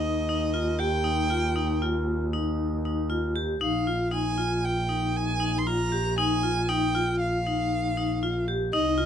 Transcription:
0, 0, Header, 1, 4, 480
1, 0, Start_track
1, 0, Tempo, 510638
1, 990, Time_signature, 5, 2, 24, 8
1, 8514, End_track
2, 0, Start_track
2, 0, Title_t, "Violin"
2, 0, Program_c, 0, 40
2, 0, Note_on_c, 0, 75, 73
2, 752, Note_on_c, 0, 79, 74
2, 766, Note_off_c, 0, 75, 0
2, 1707, Note_off_c, 0, 79, 0
2, 3403, Note_on_c, 0, 77, 58
2, 3849, Note_off_c, 0, 77, 0
2, 3888, Note_on_c, 0, 80, 73
2, 4371, Note_on_c, 0, 79, 68
2, 4385, Note_off_c, 0, 80, 0
2, 4857, Note_on_c, 0, 80, 77
2, 4871, Note_off_c, 0, 79, 0
2, 5246, Note_on_c, 0, 84, 58
2, 5260, Note_off_c, 0, 80, 0
2, 5326, Note_on_c, 0, 82, 80
2, 5340, Note_off_c, 0, 84, 0
2, 5804, Note_off_c, 0, 82, 0
2, 5810, Note_on_c, 0, 80, 79
2, 6288, Note_on_c, 0, 79, 72
2, 6302, Note_off_c, 0, 80, 0
2, 6763, Note_off_c, 0, 79, 0
2, 6769, Note_on_c, 0, 77, 68
2, 7927, Note_off_c, 0, 77, 0
2, 8209, Note_on_c, 0, 75, 74
2, 8514, Note_off_c, 0, 75, 0
2, 8514, End_track
3, 0, Start_track
3, 0, Title_t, "Vibraphone"
3, 0, Program_c, 1, 11
3, 0, Note_on_c, 1, 63, 61
3, 189, Note_off_c, 1, 63, 0
3, 273, Note_on_c, 1, 63, 61
3, 469, Note_off_c, 1, 63, 0
3, 506, Note_on_c, 1, 65, 58
3, 704, Note_off_c, 1, 65, 0
3, 742, Note_on_c, 1, 67, 60
3, 941, Note_off_c, 1, 67, 0
3, 980, Note_on_c, 1, 63, 65
3, 1179, Note_off_c, 1, 63, 0
3, 1224, Note_on_c, 1, 65, 59
3, 1421, Note_off_c, 1, 65, 0
3, 1465, Note_on_c, 1, 63, 62
3, 1662, Note_off_c, 1, 63, 0
3, 1712, Note_on_c, 1, 65, 58
3, 2104, Note_off_c, 1, 65, 0
3, 2194, Note_on_c, 1, 63, 54
3, 2587, Note_off_c, 1, 63, 0
3, 2681, Note_on_c, 1, 63, 55
3, 2876, Note_off_c, 1, 63, 0
3, 2911, Note_on_c, 1, 65, 56
3, 3110, Note_off_c, 1, 65, 0
3, 3154, Note_on_c, 1, 67, 53
3, 3353, Note_off_c, 1, 67, 0
3, 3395, Note_on_c, 1, 63, 68
3, 3594, Note_off_c, 1, 63, 0
3, 3639, Note_on_c, 1, 65, 60
3, 3836, Note_off_c, 1, 65, 0
3, 3868, Note_on_c, 1, 63, 59
3, 4070, Note_off_c, 1, 63, 0
3, 4115, Note_on_c, 1, 65, 57
3, 4513, Note_off_c, 1, 65, 0
3, 4598, Note_on_c, 1, 63, 54
3, 4995, Note_off_c, 1, 63, 0
3, 5075, Note_on_c, 1, 63, 58
3, 5277, Note_off_c, 1, 63, 0
3, 5328, Note_on_c, 1, 65, 62
3, 5524, Note_off_c, 1, 65, 0
3, 5565, Note_on_c, 1, 67, 55
3, 5762, Note_off_c, 1, 67, 0
3, 5808, Note_on_c, 1, 63, 72
3, 6005, Note_off_c, 1, 63, 0
3, 6045, Note_on_c, 1, 65, 58
3, 6243, Note_off_c, 1, 65, 0
3, 6286, Note_on_c, 1, 63, 70
3, 6484, Note_off_c, 1, 63, 0
3, 6531, Note_on_c, 1, 65, 63
3, 6923, Note_off_c, 1, 65, 0
3, 7017, Note_on_c, 1, 63, 57
3, 7405, Note_off_c, 1, 63, 0
3, 7495, Note_on_c, 1, 63, 62
3, 7687, Note_off_c, 1, 63, 0
3, 7735, Note_on_c, 1, 65, 59
3, 7927, Note_off_c, 1, 65, 0
3, 7971, Note_on_c, 1, 67, 59
3, 8163, Note_off_c, 1, 67, 0
3, 8209, Note_on_c, 1, 63, 75
3, 8401, Note_off_c, 1, 63, 0
3, 8439, Note_on_c, 1, 65, 64
3, 8514, Note_off_c, 1, 65, 0
3, 8514, End_track
4, 0, Start_track
4, 0, Title_t, "Double bass"
4, 0, Program_c, 2, 43
4, 0, Note_on_c, 2, 39, 59
4, 3400, Note_on_c, 2, 34, 56
4, 3415, Note_off_c, 2, 39, 0
4, 8198, Note_on_c, 2, 36, 66
4, 8212, Note_off_c, 2, 34, 0
4, 8514, Note_off_c, 2, 36, 0
4, 8514, End_track
0, 0, End_of_file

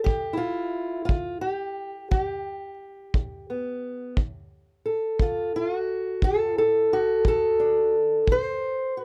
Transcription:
0, 0, Header, 1, 3, 480
1, 0, Start_track
1, 0, Tempo, 684151
1, 49, Time_signature, 12, 3, 24, 8
1, 6347, End_track
2, 0, Start_track
2, 0, Title_t, "Steel-string acoustic guitar"
2, 0, Program_c, 0, 25
2, 29, Note_on_c, 0, 67, 93
2, 54, Note_on_c, 0, 43, 73
2, 233, Note_on_c, 0, 64, 63
2, 259, Note_off_c, 0, 67, 0
2, 262, Note_on_c, 0, 65, 86
2, 484, Note_off_c, 0, 43, 0
2, 729, Note_off_c, 0, 65, 0
2, 737, Note_on_c, 0, 65, 83
2, 767, Note_off_c, 0, 64, 0
2, 769, Note_on_c, 0, 50, 59
2, 989, Note_off_c, 0, 65, 0
2, 991, Note_on_c, 0, 67, 81
2, 1202, Note_off_c, 0, 50, 0
2, 1473, Note_off_c, 0, 67, 0
2, 1481, Note_on_c, 0, 67, 79
2, 1484, Note_on_c, 0, 43, 74
2, 1920, Note_off_c, 0, 43, 0
2, 2210, Note_on_c, 0, 50, 62
2, 2447, Note_off_c, 0, 67, 0
2, 2454, Note_on_c, 0, 59, 45
2, 2643, Note_off_c, 0, 50, 0
2, 2931, Note_on_c, 0, 38, 75
2, 2933, Note_off_c, 0, 59, 0
2, 3364, Note_off_c, 0, 38, 0
2, 3407, Note_on_c, 0, 69, 50
2, 3652, Note_on_c, 0, 50, 63
2, 3662, Note_on_c, 0, 65, 80
2, 3897, Note_off_c, 0, 65, 0
2, 3900, Note_on_c, 0, 65, 83
2, 4040, Note_off_c, 0, 65, 0
2, 4040, Note_on_c, 0, 66, 83
2, 4084, Note_off_c, 0, 50, 0
2, 4370, Note_on_c, 0, 38, 73
2, 4375, Note_off_c, 0, 69, 0
2, 4378, Note_on_c, 0, 69, 93
2, 4525, Note_off_c, 0, 66, 0
2, 4525, Note_on_c, 0, 65, 83
2, 4610, Note_off_c, 0, 69, 0
2, 4616, Note_off_c, 0, 65, 0
2, 4616, Note_on_c, 0, 64, 83
2, 4619, Note_on_c, 0, 69, 83
2, 4803, Note_off_c, 0, 38, 0
2, 4854, Note_off_c, 0, 64, 0
2, 4863, Note_on_c, 0, 66, 91
2, 5083, Note_on_c, 0, 50, 66
2, 5095, Note_off_c, 0, 69, 0
2, 5108, Note_on_c, 0, 69, 98
2, 5329, Note_on_c, 0, 62, 49
2, 5519, Note_off_c, 0, 50, 0
2, 5577, Note_off_c, 0, 66, 0
2, 5781, Note_off_c, 0, 62, 0
2, 5802, Note_on_c, 0, 38, 75
2, 5819, Note_off_c, 0, 69, 0
2, 5837, Note_on_c, 0, 72, 105
2, 6238, Note_off_c, 0, 38, 0
2, 6294, Note_on_c, 0, 66, 49
2, 6307, Note_off_c, 0, 72, 0
2, 6307, Note_on_c, 0, 71, 105
2, 6347, Note_off_c, 0, 66, 0
2, 6347, Note_off_c, 0, 71, 0
2, 6347, End_track
3, 0, Start_track
3, 0, Title_t, "Drums"
3, 45, Note_on_c, 9, 36, 58
3, 115, Note_off_c, 9, 36, 0
3, 765, Note_on_c, 9, 36, 64
3, 835, Note_off_c, 9, 36, 0
3, 1485, Note_on_c, 9, 36, 65
3, 1555, Note_off_c, 9, 36, 0
3, 2204, Note_on_c, 9, 36, 68
3, 2274, Note_off_c, 9, 36, 0
3, 2925, Note_on_c, 9, 36, 61
3, 2995, Note_off_c, 9, 36, 0
3, 3645, Note_on_c, 9, 36, 65
3, 3715, Note_off_c, 9, 36, 0
3, 4365, Note_on_c, 9, 36, 63
3, 4435, Note_off_c, 9, 36, 0
3, 5085, Note_on_c, 9, 36, 67
3, 5155, Note_off_c, 9, 36, 0
3, 5806, Note_on_c, 9, 36, 64
3, 5876, Note_off_c, 9, 36, 0
3, 6347, End_track
0, 0, End_of_file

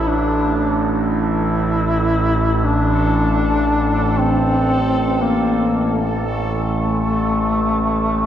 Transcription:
0, 0, Header, 1, 4, 480
1, 0, Start_track
1, 0, Tempo, 500000
1, 7931, End_track
2, 0, Start_track
2, 0, Title_t, "Synth texture"
2, 0, Program_c, 0, 99
2, 0, Note_on_c, 0, 69, 67
2, 7931, Note_off_c, 0, 69, 0
2, 7931, End_track
3, 0, Start_track
3, 0, Title_t, "Duduk"
3, 0, Program_c, 1, 69
3, 73, Note_on_c, 1, 62, 97
3, 797, Note_off_c, 1, 62, 0
3, 1038, Note_on_c, 1, 64, 102
3, 2541, Note_on_c, 1, 62, 108
3, 2555, Note_off_c, 1, 64, 0
3, 4021, Note_on_c, 1, 60, 107
3, 4035, Note_off_c, 1, 62, 0
3, 5004, Note_on_c, 1, 58, 86
3, 5018, Note_off_c, 1, 60, 0
3, 5745, Note_off_c, 1, 58, 0
3, 6017, Note_on_c, 1, 57, 87
3, 7931, Note_off_c, 1, 57, 0
3, 7931, End_track
4, 0, Start_track
4, 0, Title_t, "Synth drone"
4, 0, Program_c, 2, 95
4, 0, Note_on_c, 2, 33, 73
4, 7931, Note_off_c, 2, 33, 0
4, 7931, End_track
0, 0, End_of_file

